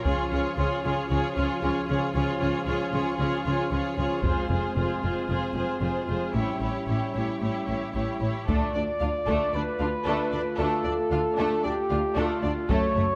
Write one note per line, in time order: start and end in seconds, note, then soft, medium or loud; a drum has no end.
0.05 0.15 C#2 medium
0.05 0.15 C#3 medium
0.05 4.20 F3 medium
0.05 4.20 C#4 medium
0.05 0.30 F4 medium
0.05 0.31 G#4 soft
0.05 0.30 C#5 medium
0.05 taiko soft
0.31 0.40 C#2 soft
0.31 0.40 C#3 soft
0.31 0.56 F4 soft
0.31 0.57 G#4 soft
0.31 0.57 C#5 soft
0.57 0.67 C#2 medium
0.57 0.66 C#3 medium
0.57 0.83 F4 medium
0.57 0.83 G#4 soft
0.57 0.83 C#5 soft
0.84 0.93 C#2 soft
0.84 0.92 C#3 medium
0.84 1.08 F4 soft
0.84 1.10 G#4 soft
0.84 1.08 C#5 soft
1.09 1.19 C#2 medium
1.09 1.19 C#3 medium
1.09 1.34 F4 soft
1.09 1.35 G#4 medium
1.09 1.34 C#5 medium
1.35 1.45 C#2 medium
1.35 1.45 C#3 soft
1.35 1.60 F4 medium
1.35 1.61 G#4 soft
1.35 1.60 C#5 soft
1.61 1.71 C#2 medium
1.61 1.71 C#3 medium
1.61 1.87 F4 soft
1.61 1.88 G#4 soft
1.61 1.86 C#5 soft
1.88 1.97 C#2 medium
1.88 1.97 C#3 medium
1.88 2.12 F4 soft
1.88 2.14 G#4 soft
1.88 2.13 C#5 soft
2.13 2.24 C#2 medium
2.13 2.24 C#3 medium
2.13 2.38 F4 medium
2.13 2.40 G#4 soft
2.13 2.38 C#5 medium
2.39 2.50 C#2 medium
2.39 2.50 C#3 medium
2.39 2.65 F4 soft
2.39 2.66 G#4 soft
2.39 2.65 C#5 medium
2.66 2.75 C#2 medium
2.66 2.76 C#3 medium
2.66 2.90 F4 medium
2.66 2.91 G#4 soft
2.66 2.92 C#5 soft
2.91 3.02 C#2 medium
2.91 3.01 C#3 medium
2.91 3.17 F4 soft
2.91 3.18 G#4 soft
2.91 3.18 C#5 soft
3.18 3.27 C#2 medium
3.18 3.27 C#3 medium
3.18 3.43 F4 soft
3.18 3.45 G#4 medium
3.18 3.44 C#5 soft
3.45 3.54 C#2 medium
3.45 3.54 C#3 soft
3.45 3.70 F4 soft
3.45 3.71 G#4 soft
3.45 3.70 C#5 soft
3.71 3.80 C#2 soft
3.71 3.80 C#3 medium
3.71 3.96 F4 soft
3.71 3.97 G#4 soft
3.71 3.97 C#5 soft
3.97 4.06 C#2 soft
3.97 4.06 C#3 soft
3.97 4.23 F4 soft
3.97 4.23 G#4 soft
3.97 4.24 C#5 soft
4.23 4.32 F1 medium
4.23 4.32 F2 medium
4.23 6.36 G#3 medium
4.23 6.32 C4 soft
4.23 4.49 F4 medium
4.23 4.49 G#4 soft
4.23 4.50 C5 medium
4.23 taiko medium
4.49 4.58 F1 soft
4.49 4.57 F2 soft
4.49 4.75 F4 soft
4.49 4.76 G#4 soft
4.49 4.77 C5 soft
4.76 4.85 F1 medium
4.76 4.84 F2 medium
4.76 5.01 F4 soft
4.76 5.02 G#4 soft
4.76 5.03 C5 soft
5.02 5.12 F1 soft
5.02 5.11 F2 soft
5.02 5.27 F4 soft
5.02 5.28 G#4 soft
5.02 5.28 C5 soft
5.28 5.38 F1 soft
5.28 5.37 F2 soft
5.28 5.53 F4 soft
5.28 5.55 G#4 soft
5.28 5.54 C5 soft
5.54 5.63 F1 soft
5.54 5.63 F2 soft
5.54 5.79 F4 soft
5.54 5.81 G#4 soft
5.54 5.81 C5 soft
5.80 5.90 F1 soft
5.80 5.90 F2 soft
5.80 6.06 F4 soft
5.80 6.07 G#4 soft
5.80 6.06 C5 soft
6.08 6.17 F1 soft
6.08 6.16 F2 soft
6.08 6.35 F4 soft
6.08 6.35 G#4 soft
6.08 6.34 C5 soft
6.33 6.43 A1 soft
6.33 6.42 A2 soft
6.33 8.19 G3 soft
6.33 8.22 C#4 soft
6.33 6.60 E4 soft
6.33 6.61 G4 soft
6.33 6.60 C#5 soft
6.61 6.71 A1 soft
6.61 6.70 A2 soft
6.61 6.86 E4 soft
6.61 6.87 G4 soft
6.61 6.86 C#5 soft
6.87 6.97 A1 soft
6.87 6.97 A2 soft
6.87 7.13 E4 soft
6.87 7.14 G4 soft
6.87 7.14 C#5 soft
7.15 7.23 A1 soft
7.15 7.23 A2 soft
7.15 7.40 E4 soft
7.15 7.42 G4 soft
7.15 7.40 C#5 soft
7.41 7.50 A1 soft
7.41 7.50 A2 soft
7.41 7.66 E4 soft
7.41 7.67 G4 soft
7.41 7.66 C#5 soft
7.67 7.77 A1 soft
7.67 7.76 A2 soft
7.67 7.93 E4 soft
7.67 7.94 G4 soft
7.67 7.93 C#5 soft
7.94 8.03 A1 soft
7.94 8.03 A2 soft
7.94 8.20 E4 soft
7.94 8.21 G4 soft
7.94 8.20 C#5 soft
8.21 8.30 A1 soft
8.21 8.30 A2 soft
8.21 8.48 E4 soft
8.21 8.48 G4 soft
8.21 8.48 C#5 soft
8.47 8.57 D2 soft
8.47 8.73 A3 soft
8.47 12.66 A3 soft
8.47 8.73 D4 soft
8.47 12.66 F4 soft
8.47 8.73 A4 soft
8.47 9.50 D5 medium
8.47 taiko medium
8.74 8.83 D2 soft
8.74 8.84 D2 soft
8.74 8.83 D4 soft
8.74 8.82 D5 soft
9.00 9.09 D2 soft
9.00 9.10 D2 soft
9.00 9.09 D4 soft
9.00 9.10 F4 soft
9.00 9.08 F5 soft
9.27 9.36 D2 medium
9.27 9.36 D2 soft
9.27 9.53 A3 medium
9.27 9.52 D4 soft
9.27 9.52 A4 soft
9.27 taiko soft
9.53 9.62 D2 soft
9.53 9.62 D4 soft
9.53 9.63 D4 soft
9.53 10.59 B4 medium
9.53 9.61 D5 soft
9.79 9.89 D2 soft
9.79 9.89 D4 soft
9.79 9.89 F4 soft
9.79 9.87 F5 soft
10.05 10.14 D2 soft
10.05 10.15 D2 medium
10.05 10.32 A3 soft
10.05 10.31 D4 medium
10.05 10.30 A4 medium
10.32 10.41 D2 soft
10.32 10.40 D4 soft
10.32 10.42 D4 soft
10.32 10.40 D5 soft
10.58 10.66 D2 soft
10.58 10.67 D2 medium
10.58 10.84 A3 soft
10.58 10.83 D4 soft
10.58 10.83 A4 medium
10.58 11.64 A4 medium
10.84 10.93 D2 soft
10.84 10.93 D4 soft
10.84 10.94 D4 soft
10.84 10.92 D5 soft
11.11 11.19 D2 soft
11.11 11.20 D2 soft
11.11 11.20 D4 soft
11.11 11.20 F4 soft
11.11 11.19 F5 soft
11.37 11.46 D2 soft
11.37 11.46 D2 medium
11.37 11.63 A3 soft
11.37 11.62 D4 soft
11.37 11.63 A4 medium
11.64 11.72 D2 soft
11.64 11.72 D4 soft
11.64 11.73 D4 soft
11.64 12.17 G4 medium
11.64 11.73 D5 soft
11.90 11.98 D2 soft
11.90 11.99 D2 soft
11.90 11.99 D4 soft
11.90 11.99 F4 soft
11.90 11.98 F5 soft
12.16 12.25 D2 medium
12.16 12.41 A3 soft
12.16 12.41 D4 soft
12.16 12.69 F4 medium
12.16 12.41 A4 medium
12.43 12.51 D2 soft
12.43 12.52 D2 soft
12.43 12.51 D4 soft
12.43 12.52 D4 soft
12.43 12.51 D5 soft
12.69 12.79 F#1 medium
12.69 12.78 F#2 medium
12.69 13.15 A3 soft
12.69 12.95 A3 medium
12.69 13.15 F#4 soft
12.69 12.94 A4 medium
12.69 13.15 C#5 medium
12.69 taiko medium
12.96 13.05 F#1 soft
12.96 13.05 F#2 soft
12.96 13.05 A3 soft
12.96 13.04 C#5 soft